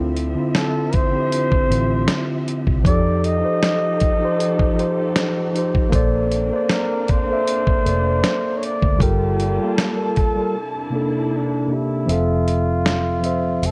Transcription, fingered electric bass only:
Already playing: D2
1.70 A1
2.67 C2
2.85 F2
5.93 A#1
7.86 F1
8.83 D2
9.00 G1
12.09 F1
13.63 F1

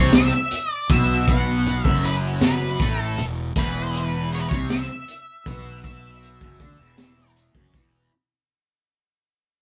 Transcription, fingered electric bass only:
Already playing: C2
0.90 B1
1.85 F#1
2.80 A1
3.19 E1
3.56 E1
4.51 C2
5.46 B1
6.42 F#1
6.60 D2
6.79 E1
7.55 F#1
7.74 E1

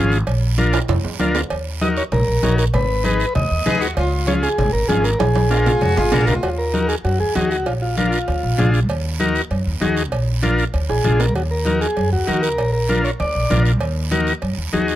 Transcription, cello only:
3.66 G#4
3.81 F#4
3.96 F4
5.50 F4
5.82 F#4
5.97 F4
6.13 F#4
6.28 F4

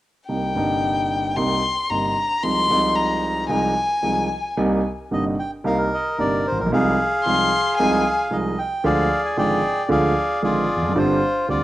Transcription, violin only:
0.29 G5
1.36 C6
1.90 A#5
2.43 C6
2.95 A#5
3.50 G#5
7.24 C6
7.77 G#5

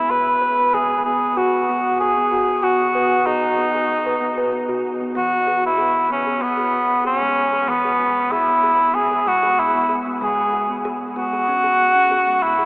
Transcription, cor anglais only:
Already playing: E4
0.10 B4
0.74 G#4
1.05 G#4
1.37 F#4
2.00 G#4
2.63 F#4
3.26 D#4
5.17 F#4
5.66 E4
6.12 C#4
6.43 B3
7.06 C#4
7.69 B3
8.32 E4
8.95 G#4
9.28 F#4
9.59 E4
10.23 G#4
11.18 F#4
12.43 E4

